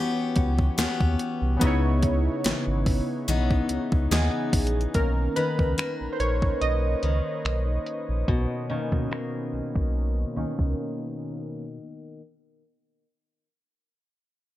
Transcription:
Already playing: E3 B3 C#4 F#4 G4 C#5
0.36 C#2, kick, closed hi-hat
0.59 kick
0.78 D#2 B3 C#4 G4, snare, closed hi-hat
1.00 D#2, kick
1.19 closed hi-hat
1.42 C2
1.57 C#3 B3
1.61 C#2 C#3 D#4 E4, kick, closed hi-hat
1.67 C#5
2.03 kick, closed hi-hat
2.44 G#1 E3, snare, closed hi-hat
2.67 G#1
2.86 kick, open hi-hat
3.28 B1 E3 B3 D#4, closed hi-hat
3.51 kick
3.69 C#2, closed hi-hat
3.92 C#2, kick
4.11 D#2 E3 B3 D#4 G#4, snare, closed hi-hat
4.53 A#1, kick, closed hi-hat, open hi-hat
4.67 closed hi-hat
4.81 closed hi-hat
4.94 B1 D#3 A#3 C#4 A#4, kick, closed hi-hat
5.36 D#3 B4, closed hi-hat
5.59 C#2, kick
5.78 A#3, finger snap, closed hi-hat
6.01 A#1
6.13 C5
6.20 A#1 C#5, closed hi-hat
6.42 kick
6.61 B1 D#5, closed hi-hat
7.03 C#2 D#3, closed hi-hat
7.45 B1, finger snap, closed hi-hat
7.86 closed hi-hat
8.09 A#1
8.28 B1 B2, kick
8.70 B2 D#3 A#3 C#4
8.92 B2, kick
9.11 A#3, finger snap
9.53 B1
9.75 B1, kick
10.36 C#2 D#3 A#3 C#4
10.59 C#2, kick

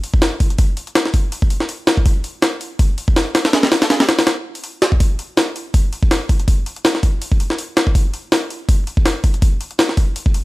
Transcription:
0.04 open hi-hat
0.14 kick
0.22 snare, open hi-hat
0.40 kick, open hi-hat
0.50 closed hi-hat
0.58 kick, open hi-hat
0.77 open hi-hat
0.87 closed hi-hat
0.95 snare, open hi-hat
1.06 snare
1.14 kick, open hi-hat
1.32 open hi-hat
1.42 kick
1.50 open hi-hat
1.60 snare
1.69 open hi-hat
1.87 snare, open hi-hat
1.97 kick
2.06 kick, open hi-hat
2.24 open hi-hat
2.42 snare, open hi-hat
2.61 open hi-hat
2.79 kick, open hi-hat
2.98 open hi-hat
3.08 kick
3.16 snare, open hi-hat
3.35 snare, open hi-hat
3.45 snare, open hi-hat
3.53 snare, open hi-hat
3.63 snare, open hi-hat
3.72 snare, open hi-hat
3.82 snare, open hi-hat
3.90 snare, open hi-hat
4.00 snare, open hi-hat
4.09 snare, open hi-hat
4.19 snare, open hi-hat
4.27 snare, open hi-hat
4.55 open hi-hat
4.64 open hi-hat
4.82 snare, open hi-hat
4.92 kick
5.00 kick, open hi-hat
5.19 open hi-hat
5.37 snare, open hi-hat
5.56 open hi-hat
5.74 kick, open hi-hat
5.93 open hi-hat
6.03 kick
6.11 snare, open hi-hat
6.29 kick, open hi-hat
6.40 closed hi-hat
6.48 kick, open hi-hat
6.66 open hi-hat
6.76 closed hi-hat
6.85 snare, open hi-hat
6.95 snare
7.03 kick, open hi-hat
7.22 open hi-hat
7.32 kick
7.40 open hi-hat
7.50 snare
7.58 open hi-hat
7.77 snare, open hi-hat
7.87 kick
7.95 kick, open hi-hat
8.14 open hi-hat
8.32 snare, open hi-hat
8.50 open hi-hat
8.69 kick, open hi-hat
8.87 open hi-hat
8.97 kick
9.06 snare, open hi-hat
9.24 kick, open hi-hat
9.34 closed hi-hat
9.42 kick, open hi-hat
9.61 open hi-hat
9.71 closed hi-hat
9.79 snare, open hi-hat
9.89 snare
9.97 kick, open hi-hat
10.16 open hi-hat
10.26 kick
10.34 open hi-hat

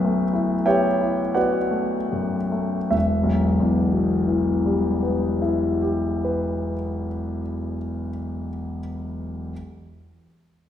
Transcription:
Already playing: B1 F#2 A3 B3 B4 E5 G5 B5
0.05 A3
0.33 E4
0.66 B3 G4 C#5 E5 G5
1.01 E4
1.35 B3 F#4 B4 D5 F#5
1.71 A3
2.12 F#2
2.52 A3
2.91 E1 E5
3.23 B1
3.60 E2
3.93 B2
4.27 E3
4.66 G3
5.03 B3
5.42 E4
5.82 G4
6.24 B4

